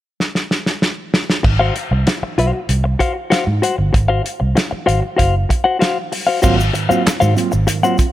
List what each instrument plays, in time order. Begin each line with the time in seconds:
0.20 snare
0.35 snare
0.51 snare
0.66 snare
0.82 snare
1.14 snare
1.30 snare
1.43 fingered electric bass G#1, muted clean electric guitar stroke, kick, crash
1.59 clean electric guitar F#4 C5 F5
1.76 muted clean electric guitar stroke, closed hi-hat
1.91 fingered electric bass C2, muted clean electric guitar stroke
2.07 muted clean electric guitar stroke, snare, closed hi-hat
2.23 muted fingered electric bass stroke, muted clean electric guitar stroke
2.38 fingered electric bass B1, clean electric guitar F#4 C5 F5, closed hi-hat
2.53 muted clean electric guitar stroke
2.69 fingered electric bass C2, closed hi-hat
2.84 muted clean electric guitar stroke
2.99 clean electric guitar F#4 C5 F5, kick, closed hi-hat
3.15 muted clean electric guitar stroke
3.30 clean electric guitar F#4 C5 F5, snare, closed hi-hat
3.47 fingered electric bass G#2, muted clean electric guitar stroke
3.62 clean electric guitar F#4 C5 F#5, closed hi-hat
3.78 fingered electric bass G1, muted clean electric guitar stroke
3.93 fingered electric bass G#1, muted clean electric guitar stroke, kick, closed hi-hat
4.08 clean electric guitar F#4 C5 F5
4.24 muted clean electric guitar stroke, closed hi-hat
4.40 fingered electric bass C2, muted clean electric guitar stroke
4.55 muted clean electric guitar stroke, snare, closed hi-hat
4.71 muted clean electric guitar stroke, muted fingered electric bass stroke
4.86 fingered electric bass G#1, clean electric guitar F#4 C5 F5, closed hi-hat
5.02 muted clean electric guitar stroke
5.17 fingered electric bass F#1, clean electric guitar F#4 C5 F5, kick, closed hi-hat
5.49 muted clean electric guitar stroke, kick, closed hi-hat
5.64 clean electric guitar F#4 C5 F#5
5.79 clean electric guitar F#4 C5 F5, snare, closed hi-hat
6.12 muted clean electric guitar stroke, open hi-hat
6.27 clean electric guitar F#4 C5 F5
6.42 fingered electric bass G#1, tine electric piano F#3 A#3 C4 F4, clean electric guitar F#4 C5 F5, kick, crash, shaker
6.57 muted clean electric guitar stroke, shaker
6.73 tine electric piano G#2 D#3, muted clean electric guitar stroke, closed hi-hat, shaker
6.89 tine electric piano F#3 A#3 C4 F4, clean electric guitar F#4 C5 F5, muted fingered electric bass stroke, shaker
7.05 tine electric piano C4 F4, muted clean electric guitar stroke, muted fingered electric bass stroke, snare, clap, closed hi-hat, shaker
7.20 tine electric piano G#2 D#3, fingered electric bass G#2, clean electric guitar F#4 C5 F5, shaker
7.36 tine electric piano F#3 A#3 C4 F4, muted clean electric guitar stroke, closed hi-hat, shaker
7.52 fingered electric bass G#1, muted clean electric guitar stroke, shaker
7.67 tine electric piano G#2 D#3, muted clean electric guitar stroke, closed hi-hat, shaker
7.83 tine electric piano F#3 A#3 C4 F4, clean electric guitar F#4 C5 F#5, shaker
7.98 tine electric piano C4 F4, muted fingered electric bass stroke, muted clean electric guitar stroke, kick, closed hi-hat, shaker